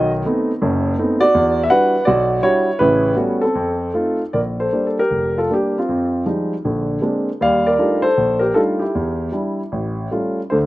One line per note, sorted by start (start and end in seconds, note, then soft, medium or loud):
0.00 0.21 B1 medium
0.00 0.21 D#3 medium
0.00 0.11 F#4 medium
0.00 0.10 D#5 medium
0.25 0.50 A3 soft
0.25 0.51 B3 soft
0.25 0.51 C4 soft
0.25 0.51 D#4 medium
0.62 0.93 F#1 medium
0.62 0.93 F#2 medium
0.99 1.23 A3 soft
0.99 1.23 B3 soft
0.99 1.23 C4 soft
0.99 1.23 D#4 medium
1.20 1.61 F#4 medium
1.20 1.61 D5 loud
1.34 1.65 E2 medium
1.63 1.69 E5 medium
1.70 1.94 G3 soft
1.70 1.94 D4 soft
1.70 1.94 E4 soft
1.70 1.94 F#4 medium
1.70 2.04 B4 medium
1.70 2.07 F#5 medium
2.05 2.39 B1 medium
2.05 2.41 F#4 medium
2.05 2.44 D5 medium
2.42 2.68 G3 medium
2.42 2.68 D4 soft
2.42 2.68 E4 soft
2.42 2.68 F#4 medium
2.42 2.81 C#5 medium
2.79 3.12 A1 medium
2.79 3.12 C#3 medium
2.79 3.15 E4 medium
2.79 3.14 B4 medium
3.16 3.42 G3 soft
3.16 3.42 A3 soft
3.16 3.42 B3 soft
3.16 3.42 C#4 soft
3.16 3.42 F#4 medium
3.41 4.17 C4 soft
3.41 4.15 A4 medium
3.55 3.89 F2 medium
3.94 4.21 A3 soft
3.94 4.21 D#4 soft
3.94 4.21 F4 soft
4.33 4.67 A#1 soft
4.33 4.39 A#4 medium
4.33 4.39 D5 medium
4.60 4.85 A4 soft
4.60 4.87 C5 medium
4.72 4.99 G3 soft
4.72 4.99 A#3 soft
4.72 4.99 D4 soft
4.87 4.97 A4 soft
4.99 5.35 G4 medium
4.99 5.39 A#4 medium
5.11 5.45 F1 soft
5.38 5.50 F4 soft
5.38 5.52 A4 medium
5.50 5.77 G3 soft
5.50 5.77 A#3 soft
5.50 5.77 D4 soft
5.54 5.78 G4 medium
5.78 6.25 C4 soft
5.78 6.26 F4 medium
5.89 6.22 F2 medium
6.26 6.53 F3 soft
6.26 6.53 G3 soft
6.26 6.53 G#3 soft
6.26 6.53 D#4 soft
6.65 6.98 A#1 medium
6.65 6.98 D3 medium
7.02 7.28 G#3 soft
7.02 7.28 A#3 soft
7.02 7.28 C4 soft
7.02 7.28 D4 soft
7.41 7.74 D#2 medium
7.41 7.74 G3 medium
7.41 7.65 D5 medium
7.41 7.67 F5 medium
7.66 8.02 A#4 medium
7.66 8.05 D5 medium
7.79 8.05 G3 soft
7.79 8.05 A3 soft
7.79 8.05 D4 soft
7.79 8.05 D#4 soft
7.79 8.05 F4 soft
8.02 8.39 A4 medium
8.02 8.42 C5 medium
8.17 8.50 A#1 medium
8.39 8.54 G4 medium
8.39 8.55 A#4 medium
8.54 8.81 G3 soft
8.54 8.81 A3 soft
8.54 8.81 D4 soft
8.54 8.82 D#4 soft
8.54 8.82 F4 medium
8.54 8.60 A4 medium
8.79 9.30 E4 soft
8.79 9.29 G4 medium
8.95 9.28 E2 medium
9.32 9.59 G3 soft
9.32 9.59 D4 soft
9.32 9.60 E4 soft
9.72 10.06 A1 medium
10.11 10.39 G3 soft
10.11 10.39 A3 soft
10.11 10.39 C#4 soft
10.11 10.39 F4 soft
10.50 10.66 D2 medium
10.50 10.66 D3 medium
10.50 10.58 A4 soft
10.50 10.56 C5 medium